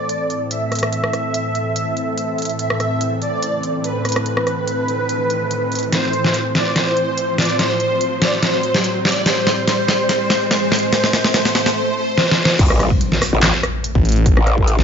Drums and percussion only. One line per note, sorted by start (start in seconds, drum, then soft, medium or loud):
0.09 closed hi-hat medium
0.30 closed hi-hat medium
0.51 closed hi-hat medium
0.72 cross-stick soft
0.72 closed hi-hat soft
0.75 closed hi-hat medium
0.79 closed hi-hat medium
0.83 cross-stick medium
0.93 closed hi-hat medium
1.04 cross-stick medium
1.13 cross-stick soft
1.13 closed hi-hat soft
1.34 closed hi-hat medium
1.55 closed hi-hat medium
1.76 closed hi-hat medium
1.97 closed hi-hat soft
2.18 closed hi-hat medium
2.38 closed hi-hat soft
2.42 closed hi-hat medium
2.45 closed hi-hat medium
2.49 closed hi-hat soft
2.59 closed hi-hat medium
2.70 cross-stick medium
2.80 cross-stick soft
2.80 closed hi-hat soft
3.01 closed hi-hat medium
3.22 closed hi-hat soft
3.43 closed hi-hat medium
3.63 closed hi-hat medium
3.84 closed hi-hat medium
4.05 cross-stick soft
4.05 closed hi-hat soft
4.09 closed hi-hat medium
4.12 closed hi-hat medium
4.16 cross-stick medium
4.16 closed hi-hat soft
4.26 closed hi-hat medium
4.37 cross-stick medium
4.47 cross-stick medium
4.47 closed hi-hat soft
4.68 closed hi-hat medium
4.88 closed hi-hat soft
5.09 closed hi-hat medium
5.30 closed hi-hat medium
5.51 closed hi-hat medium
5.72 closed hi-hat soft
5.75 closed hi-hat medium
5.79 closed hi-hat medium
5.83 closed hi-hat soft
5.93 snare soft
5.93 closed hi-hat medium
6.13 closed hi-hat medium
6.24 snare soft
6.34 closed hi-hat medium
6.55 snare medium
6.55 closed hi-hat soft
6.76 snare medium
6.76 closed hi-hat medium
6.97 closed hi-hat soft
7.18 closed hi-hat medium
7.38 snare medium
7.38 closed hi-hat soft
7.42 closed hi-hat medium
7.45 closed hi-hat medium
7.49 closed hi-hat soft
7.59 snare medium
7.59 closed hi-hat medium
7.80 closed hi-hat medium
8.01 closed hi-hat medium
8.22 snare medium
8.22 closed hi-hat medium
8.43 snare medium
8.43 closed hi-hat medium
8.63 closed hi-hat medium
8.74 snare medium
8.84 closed hi-hat medium
9.05 snare medium
9.05 closed hi-hat soft
9.09 closed hi-hat medium
9.12 closed hi-hat medium
9.16 closed hi-hat soft
9.26 snare medium
9.26 closed hi-hat medium
9.47 snare medium
9.47 closed hi-hat medium
9.68 snare medium
9.68 closed hi-hat medium
9.88 snare medium
9.88 closed hi-hat medium
10.09 snare medium
10.09 closed hi-hat medium
10.30 snare medium
10.30 closed hi-hat medium
10.51 snare medium
10.51 closed hi-hat medium
10.72 snare medium
10.72 closed hi-hat medium
10.75 closed hi-hat medium
10.79 closed hi-hat medium
10.83 closed hi-hat soft
10.93 snare medium
10.93 closed hi-hat medium
11.04 snare medium
11.13 snare medium
11.13 closed hi-hat medium
11.24 snare medium
11.34 snare loud
11.34 closed hi-hat medium
11.45 snare medium
11.55 snare medium
11.55 closed hi-hat medium
11.66 snare medium
12.18 snare medium
12.31 snare medium
12.45 snare medium
12.59 kick loud
12.59 closed hi-hat medium
12.59 crash loud
12.70 cross-stick medium
12.80 cross-stick soft
12.80 closed hi-hat medium
12.91 kick medium
13.01 closed hi-hat medium
13.12 snare soft
13.22 cross-stick medium
13.22 open hi-hat loud
13.43 snare loud
13.43 clap medium
13.43 closed hi-hat medium
13.63 cross-stick medium
13.63 closed hi-hat medium
13.84 closed hi-hat medium
13.95 kick loud
14.05 closed hi-hat soft
14.09 closed hi-hat medium
14.12 closed hi-hat medium
14.16 closed hi-hat soft
14.26 kick loud
14.26 closed hi-hat medium
14.37 cross-stick medium
14.47 cross-stick soft
14.47 closed hi-hat medium
14.58 kick medium
14.68 closed hi-hat medium
14.79 snare soft